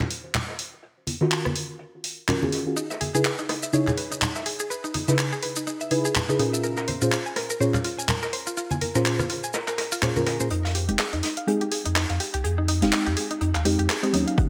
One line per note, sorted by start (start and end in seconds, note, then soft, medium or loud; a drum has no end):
0.00 clap soft
0.00 low conga medium
0.10 closed hi-hat medium
0.10 open hi-hat loud
0.24 closed hi-hat soft
0.34 clap loud
0.34 closed hi-hat medium
0.34 low conga medium
0.48 snare soft
0.59 closed hi-hat medium
0.59 open hi-hat loud
0.73 closed hi-hat soft
0.83 closed hi-hat medium
1.07 closed hi-hat medium
1.07 open hi-hat loud
1.07 high conga medium
1.21 1.45 D#3 loud
1.21 1.45 C#4 medium
1.21 1.45 F4 medium
1.21 1.45 F#4 medium
1.21 1.45 A#4 loud
1.21 snare soft
1.31 clap loud
1.45 cross-stick medium
1.45 high conga medium
1.56 closed hi-hat medium
1.56 open hi-hat loud
1.79 closed hi-hat medium
2.04 closed hi-hat medium
2.04 open hi-hat loud
2.28 2.38 D#3 medium
2.28 2.39 C#4 medium
2.28 2.39 F4 medium
2.28 2.39 F#4 medium
2.28 2.39 A#4 medium
2.28 snare loud
2.28 clap loud
2.28 low conga medium
2.42 2.63 D#3 medium
2.42 2.63 C#4 medium
2.42 2.63 F4 medium
2.42 2.63 F#4 medium
2.42 2.63 G#4 medium
2.42 high conga medium
2.52 snare soft
2.52 closed hi-hat medium
2.52 open hi-hat loud
2.66 2.75 D#3 medium
2.66 2.75 C#4 medium
2.66 2.75 F4 medium
2.66 2.75 F#4 medium
2.66 2.76 G#4 medium
2.76 2.80 D#4 medium
2.76 closed hi-hat medium
2.76 maracas medium
2.90 2.95 E5 medium
2.90 snare soft
2.90 maracas soft
3.01 3.04 G#4 medium
3.01 closed hi-hat medium
3.01 open hi-hat loud
3.01 high conga medium
3.14 3.28 C#3 medium
3.14 3.28 D#4 medium
3.14 3.28 E4 medium
3.14 3.22 G#4 loud
3.14 3.28 G#4 medium
3.14 3.29 B4 medium
3.14 maracas medium
3.24 3.34 B4 medium
3.24 clap loud
3.24 closed hi-hat medium
3.24 maracas medium
3.38 3.46 D#4 medium
3.38 maracas soft
3.49 3.53 D#4 medium
3.49 cross-stick medium
3.49 snare soft
3.49 closed hi-hat medium
3.49 open hi-hat loud
3.63 3.68 E5 medium
3.63 maracas medium
3.73 3.89 C#3 loud
3.73 3.90 D#4 medium
3.73 3.90 E4 medium
3.73 3.77 G#4 medium
3.73 3.90 G#4 medium
3.73 3.90 C#5 loud
3.73 closed hi-hat medium
3.73 maracas medium
3.87 3.94 G#4 loud
3.87 clap soft
3.87 low conga medium
3.87 maracas soft
3.97 4.07 B4 medium
3.97 closed hi-hat medium
3.97 open hi-hat loud
4.11 4.18 D#4 medium
4.11 closed hi-hat soft
4.11 maracas medium
4.21 4.26 D#4 medium
4.21 clap loud
4.21 closed hi-hat medium
4.21 low conga medium
4.21 maracas medium
4.35 4.40 E5 medium
4.35 snare soft
4.35 maracas soft
4.46 4.50 G#4 medium
4.46 closed hi-hat medium
4.46 open hi-hat loud
4.59 4.67 G#4 loud
4.59 closed hi-hat soft
4.59 maracas medium
4.70 4.80 B4 medium
4.70 closed hi-hat medium
4.70 maracas medium
4.84 4.91 D#4 medium
4.84 maracas soft
4.94 4.98 D#4 medium
4.94 closed hi-hat medium
4.94 open hi-hat loud
4.94 high conga medium
5.08 5.32 C#3 loud
5.08 5.32 D#4 medium
5.08 5.32 E4 medium
5.08 5.32 G#4 medium
5.08 5.32 B4 loud
5.08 5.13 E5 medium
5.08 snare soft
5.08 maracas medium
5.18 5.22 G#4 medium
5.18 clap loud
5.18 closed hi-hat medium
5.18 maracas medium
5.32 5.39 G#4 loud
5.32 maracas soft
5.43 5.52 B4 medium
5.43 closed hi-hat medium
5.43 open hi-hat medium
5.56 5.64 D#4 medium
5.56 maracas medium
5.66 5.71 D#4 medium
5.66 closed hi-hat medium
5.66 maracas medium
5.81 5.85 E5 medium
5.81 maracas soft
5.90 6.07 C#3 medium
5.90 6.07 D#4 medium
5.90 6.07 E4 medium
5.90 5.95 G#4 medium
5.90 6.07 G#4 medium
5.90 6.08 B4 loud
5.90 closed hi-hat medium
5.90 open hi-hat loud
6.05 6.12 G#4 loud
6.05 maracas medium
6.15 6.25 B4 medium
6.15 clap loud
6.15 closed hi-hat medium
6.15 low conga medium
6.15 maracas medium
6.29 6.38 C#3 medium
6.29 6.38 D#4 medium
6.29 6.36 D#4 medium
6.29 6.38 E4 medium
6.29 6.38 G#4 medium
6.29 6.38 B4 medium
6.29 maracas soft
6.38 6.98 A#2 medium
6.38 6.98 C#4 medium
6.38 6.43 D#4 medium
6.38 6.98 F4 medium
6.38 6.99 G#4 medium
6.38 6.99 A#4 loud
6.38 closed hi-hat medium
6.38 open hi-hat medium
6.53 6.58 E5 medium
6.53 maracas medium
6.63 6.67 A#4 medium
6.63 closed hi-hat medium
6.63 maracas medium
6.77 6.85 A#4 loud
6.77 snare soft
6.77 maracas soft
6.88 6.97 C5 medium
6.88 closed hi-hat medium
6.88 open hi-hat medium
6.88 high conga medium
7.01 7.15 A#2 medium
7.01 7.15 C#4 medium
7.01 7.09 F4 medium
7.01 7.15 F4 medium
7.01 7.15 G#4 medium
7.01 7.16 C5 medium
7.01 maracas medium
7.12 7.16 F4 medium
7.12 clap loud
7.12 maracas medium
7.26 7.31 G#5 medium
7.26 maracas soft
7.36 7.40 A#4 medium
7.36 cross-stick medium
7.36 snare soft
7.36 closed hi-hat medium
7.36 open hi-hat medium
7.50 7.57 A#4 loud
7.50 maracas medium
7.60 7.76 A#2 loud
7.60 7.77 C#4 medium
7.60 7.77 F4 medium
7.60 7.77 G#4 medium
7.60 7.70 C5 medium
7.60 7.77 C#5 loud
7.60 closed hi-hat medium
7.60 maracas medium
7.74 7.81 F4 medium
7.74 clap soft
7.74 low conga medium
7.74 maracas soft
7.84 7.88 F4 medium
7.84 closed hi-hat medium
7.84 open hi-hat medium
7.98 8.03 G#5 medium
7.98 closed hi-hat soft
7.98 maracas medium
8.08 8.13 A#4 medium
8.08 clap loud
8.08 low conga medium
8.08 maracas medium
8.22 8.30 A#4 loud
8.22 snare medium
8.22 maracas soft
8.33 8.42 C5 medium
8.33 closed hi-hat medium
8.33 open hi-hat medium
8.47 8.54 F4 medium
8.47 closed hi-hat soft
8.47 maracas medium
8.57 8.61 F4 medium
8.57 closed hi-hat medium
8.57 maracas medium
8.71 8.76 G#5 medium
8.71 high conga medium
8.71 maracas soft
8.81 8.85 A#4 medium
8.81 closed hi-hat medium
8.81 open hi-hat loud
8.81 high conga medium
8.95 9.19 A#2 loud
8.95 9.19 C#4 medium
8.95 9.19 F4 medium
8.95 9.19 G#4 medium
8.95 9.02 A#4 loud
8.95 9.19 C5 loud
8.95 snare soft
8.95 maracas medium
9.05 9.15 C5 medium
9.05 clap loud
9.05 closed hi-hat medium
9.05 maracas medium
9.19 9.27 F4 medium
9.19 cross-stick medium
9.19 high conga medium
9.19 maracas soft
9.30 9.34 F4 medium
9.30 closed hi-hat medium
9.30 open hi-hat loud
9.44 9.48 G#5 medium
9.44 maracas medium
9.53 9.58 A#4 medium
9.53 snare loud
9.53 closed hi-hat medium
9.53 maracas medium
9.67 9.75 A#4 loud
9.67 clap soft
9.67 maracas soft
9.78 9.82 A#4 medium
9.78 snare loud
9.78 closed hi-hat medium
9.78 open hi-hat loud
9.92 9.99 F4 loud
9.92 open hi-hat medium
9.92 maracas medium
10.02 10.13 A#2 medium
10.02 10.13 C#4 medium
10.02 10.13 F4 medium
10.02 10.13 G#4 medium
10.02 10.13 C5 loud
10.02 10.06 C#5 medium
10.02 snare soft
10.02 clap loud
10.02 low conga medium
10.02 maracas medium
10.16 10.37 A#2 medium
10.16 10.37 C#4 medium
10.16 10.37 F4 medium
10.16 10.37 G#4 medium
10.16 10.23 A#4 medium
10.16 10.37 A#4 loud
10.16 high conga medium
10.16 maracas soft
10.26 10.33 A#4 loud
10.26 snare loud
10.26 closed hi-hat medium
10.26 open hi-hat medium
10.40 10.49 A#2 medium
10.40 10.49 C#4 medium
10.40 10.49 F4 medium
10.40 10.50 G#4 medium
10.40 10.50 A#4 medium
10.40 10.47 C5 medium
10.40 maracas medium
10.50 10.90 F2 loud
10.50 10.54 D#4 medium
10.50 closed hi-hat medium
10.65 10.69 F5 medium
10.65 snare soft
10.75 10.79 G4 medium
10.75 closed hi-hat medium
10.75 open hi-hat loud
10.88 10.97 F1 loud
10.88 11.02 G#3 medium
10.88 11.02 C4 medium
10.88 11.02 D#4 medium
10.88 10.96 G4 loud
10.88 11.03 G4 medium
10.88 closed hi-hat medium
10.99 11.09 G#4 medium
10.99 snare loud
10.99 clap loud
10.99 closed hi-hat medium
11.13 11.21 F2 medium
11.13 11.20 D#4 medium
11.13 closed hi-hat soft
11.23 11.27 D#4 medium
11.23 snare soft
11.23 closed hi-hat medium
11.23 open hi-hat loud
11.37 11.42 F5 medium
11.37 closed hi-hat medium
11.47 11.64 G#3 medium
11.47 11.64 C4 medium
11.47 11.64 D#4 medium
11.47 11.51 G4 medium
11.47 11.64 G#4 loud
11.47 closed hi-hat medium
11.61 11.68 G4 loud
11.61 closed hi-hat medium
11.72 11.81 G#4 medium
11.72 closed hi-hat medium
11.72 open hi-hat loud
11.85 12.05 F2 loud
11.85 11.93 D#4 medium
11.85 closed hi-hat medium
11.85 closed hi-hat soft
11.96 12.00 D#4 medium
11.96 snare loud
11.96 clap loud
12.09 12.18 F2 loud
12.09 12.14 F5 medium
12.09 snare medium
12.09 closed hi-hat medium
12.20 12.24 G4 medium
12.20 closed hi-hat medium
12.20 open hi-hat loud
12.34 12.42 C2 medium
12.34 12.41 G4 loud
12.34 closed hi-hat medium
12.34 closed hi-hat soft
12.44 12.84 F2 loud
12.44 12.54 G#4 medium
12.44 closed hi-hat medium
12.58 12.65 D#4 medium
12.68 12.72 D#4 medium
12.68 closed hi-hat medium
12.68 open hi-hat loud
12.82 12.91 F1 loud
12.82 13.06 G#3 medium
12.82 13.06 C4 medium
12.82 13.06 D#4 medium
12.82 13.06 G4 loud
12.82 12.87 F5 medium
12.82 snare soft
12.82 closed hi-hat medium
12.92 12.96 G4 medium
12.92 snare loud
12.92 clap loud
12.92 closed hi-hat medium
13.06 13.15 F2 medium
13.06 13.14 G4 loud
13.06 closed hi-hat soft
13.17 13.26 G#4 medium
13.17 closed hi-hat medium
13.17 open hi-hat loud
13.31 13.38 D#4 medium
13.31 closed hi-hat medium
13.41 13.52 F2 loud
13.41 13.45 D#4 medium
13.41 closed hi-hat medium
13.55 13.63 D#2 medium
13.55 13.60 F5 medium
13.55 clap soft
13.55 closed hi-hat medium
13.65 13.77 F2 medium
13.65 13.81 G#3 medium
13.65 13.81 C4 medium
13.65 13.82 D#4 medium
13.65 13.69 G4 medium
13.65 13.82 G4 loud
13.65 closed hi-hat medium
13.65 open hi-hat loud
13.79 13.88 F2 loud
13.79 13.86 G4 loud
13.79 closed hi-hat medium
13.89 13.99 G#4 medium
13.89 snare loud
13.89 clap loud
13.89 closed hi-hat medium
14.03 14.12 G#3 medium
14.03 14.12 C4 medium
14.03 14.10 D#4 medium
14.03 14.12 D#4 medium
14.03 14.12 G4 medium
14.03 closed hi-hat medium
14.13 14.25 D#2 medium
14.13 14.49 F#3 loud
14.13 14.49 A#3 medium
14.13 14.49 C#4 medium
14.13 14.17 D#4 medium
14.13 14.49 D#4 loud
14.13 closed hi-hat medium
14.13 open hi-hat loud
14.27 14.32 F5 medium
14.27 closed hi-hat medium
14.38 14.49 D#2 loud
14.38 14.42 F#4 medium
14.38 kick loud
14.38 closed hi-hat medium